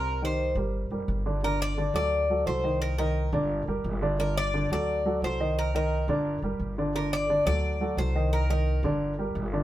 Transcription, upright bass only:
X:1
M:4/4
L:1/8
Q:1/4=174
K:Gm
V:1 name="Upright bass" clef=bass
C,,3 G,,,2 ^F,,, G,,,2- | G,,,3 D,,3 C,,2- | C,,3 G,,,2 ^F,,, G,,,2- | G,,,3 D,,3 C,,2- |
C,,3 G,,,2 ^F,,, G,,,2- | G,,,3 D,,3 C,,2- | C,,3 G,,,3 G,,,2 |]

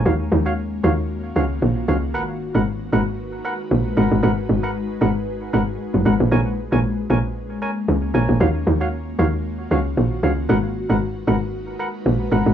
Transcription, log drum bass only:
X:1
M:4/4
L:1/16
Q:"Swing 16ths" 1/4=115
K:Ebm
V:1 name="Log drum bass" clef=bass
E,,2 E,,4 E,,4 D,,2 B,,,2 D,,2 | A,,,3 A,,,3 A,,,4 z2 B,,,2 A,,, A,,, | A,,,2 A,,,4 A,,,4 A,,,2 z G,,, A,,, B,,, | B,,,3 B,,,3 B,,,4 z2 D,,2 B,,, B,,, |
E,,2 E,,4 E,,4 D,,2 B,,,2 D,,2 | A,,,3 A,,,3 A,,,4 z2 B,,,2 A,,, A,,, |]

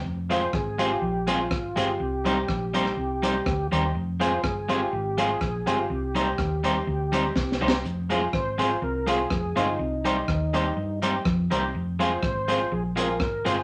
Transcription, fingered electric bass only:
X:1
M:4/4
L:1/8
Q:"Swing" 1/4=123
K:Fdor
V:1 name="Fingered electric bass" clef=bass
F,,,2 A,,,2 B,,,2 A,,, G,,, | C,,2 B,,,2 C,,2 D,, E,, | F,,,2 G,,,2 A,,,2 B,,, G,,, | C,,2 E,,2 D,,2 C,, C,, |
F,,,2 A,,,2 C,,2 F,,, G,,, | C,,2 E,,2 G,,2 F,, C,, | F,,,2 A,,,2 B,,,2 A,,, G,,, |]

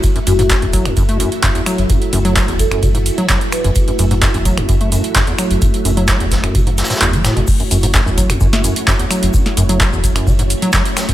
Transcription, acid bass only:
X:1
M:4/4
L:1/16
Q:1/4=129
K:F#m
V:1 name="Acid bass" clef=bass
z F,, F,, G,, F,, F,, F, E,, F,, A, F,, z F,, E,, F,2 | E,, z F,, F, F, E,, z F,, C, G,, z F, F, z2 F,, | z F,, F,, G,, F,, F,, F, E,, F,, A, F,, z F,, E,, F,2 | E,, z F,, F, F, E,, z F,, C, G,, z A,, E,, F, A,, B,, |
z F,, F,, G,, F,, F,, F, E,, F,, A, F,, z F,, E,, F,2 | E,, z F,, F, F, E,, z F,, C, G,, z F, F, z2 F,, |]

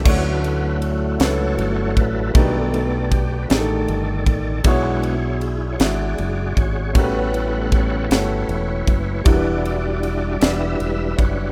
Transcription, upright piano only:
X:1
M:6/8
L:1/8
Q:3/8=52
K:D
V:1 name="Upright piano"
[A,CDFc]2 z [A,CDFB]2 z | [A,D^DGB]2 z [A,=D^DG^GA]2 z | [^G,DEFc]2 z [G,DEFe]2 z | [A,CFG_B=B]2 z [A,CFGA]2 z |
[G,DEF_B=B]2 z [G,DEFd]2 z |]
V:2 name="Upright piano" clef=bass
D,3 z3 | B,,3 z3 | B,,3 z3 | A,,3 z3 |
E,3 z3 |]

